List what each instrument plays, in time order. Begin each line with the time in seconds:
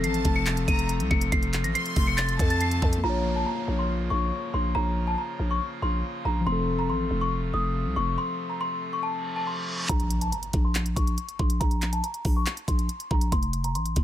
Already playing: pipe organ C3 F3 A3 F4, tine electric piano F3 C4 A4
0.04 808-style bass A1, violin section A5, celesta C7, closed hi-hat
0.14 closed hi-hat
0.25 808-style bass F1, kick, closed hi-hat
0.36 celesta C#7
0.46 clap, closed hi-hat
0.57 closed hi-hat
0.68 808-style bass F1, violin section A#5, celesta D#7, kick, closed hi-hat
0.79 closed hi-hat
0.89 closed hi-hat
1.00 808-style bass C2, closed hi-hat
1.11 808-style bass F1, celesta C#7, kick
1.21 closed hi-hat
1.32 808-style bass F1, celesta C7, kick, closed hi-hat
1.43 closed hi-hat
1.53 clap, closed hi-hat
1.64 808-style bass A1, celesta A#6, closed hi-hat
1.75 violin section C6, celesta C7, closed hi-hat
1.86 closed hi-hat
1.96 808-style bass F1, kick, open hi-hat
2.07 celesta C#7
2.17 celesta A6, clap, closed hi-hat
2.29 closed hi-hat
2.39 808-style bass F2, violin section A5, kick, closed hi-hat
2.50 celesta A6, closed hi-hat
2.61 celesta C7, closed hi-hat
2.71 closed hi-hat
2.82 808-style bass F2, kick
2.93 closed hi-hat
2.98 tine electric piano A#3
3.04 808-style bass A#1, pipe organ C#3 F3 A#3 F4, tine electric piano F4, celesta A#5, downlifter
3.09 tine electric piano C#5
3.36 celesta A5
3.46 celesta A#5
3.68 808-style bass A#1
3.79 celesta C6
4.10 808-style bass A#1, celesta C#6
4.54 808-style bass A#1, celesta C6
4.75 808-style bass A#1, celesta A#5
5.07 celesta A5
5.18 celesta A#5
5.39 808-style bass A#1
5.51 celesta C#6
5.82 808-style bass A#1, celesta C6
6.25 808-style bass A#1, celesta A#5
6.40 tine electric piano F3
6.46 808-style bass F1, pipe organ C3 A3, tine electric piano C4, celesta C6
6.52 tine electric piano A4
6.79 celesta A#5
6.89 808-style bass A1, celesta C6
7.11 808-style bass F1
7.21 celesta C#6
7.54 808-style bass F1, celesta D#6
7.86 808-style bass C2
7.96 808-style bass F1, celesta C#6
8.18 celesta C6
8.50 celesta A#5
8.61 celesta C6
8.93 celesta C#6
9.03 celesta A5, reverse cymbal
9.36 celesta A5
9.47 celesta C6
9.89 808-style bass A#1, celesta A#5, kick, closed hi-hat, impact
10.00 closed hi-hat
10.10 closed hi-hat
10.21 celesta A5, closed hi-hat
10.32 celesta A#5, closed hi-hat
10.43 closed hi-hat
10.53 808-style bass A#1, kick, closed hi-hat
10.65 celesta C6
10.75 clap, closed hi-hat
10.86 closed hi-hat
10.96 808-style bass A#1, celesta C#6, kick, closed hi-hat
11.07 closed hi-hat
11.18 closed hi-hat
11.29 closed hi-hat
11.39 808-style bass A#1, celesta C6, kick
11.50 closed hi-hat
11.60 808-style bass A#1, celesta A#5, kick, closed hi-hat
11.71 closed hi-hat
11.82 clap, closed hi-hat
11.93 celesta A5, closed hi-hat
12.04 celesta A#5, closed hi-hat
12.14 closed hi-hat
12.25 808-style bass A#1, kick, open hi-hat
12.37 celesta C#6
12.46 clap, closed hi-hat
12.57 closed hi-hat
12.68 808-style bass A#1, celesta C6, kick, closed hi-hat
12.79 closed hi-hat
12.89 closed hi-hat
13.00 closed hi-hat
13.11 808-style bass A#1, celesta A#5, kick
13.21 closed hi-hat
13.32 808-style bass F1, celesta C6, kick, closed hi-hat
13.43 closed hi-hat
13.53 closed hi-hat
13.64 celesta A#5, closed hi-hat
13.75 808-style bass A1, celesta C6, closed hi-hat
13.86 closed hi-hat
13.96 808-style bass F1, kick, closed hi-hat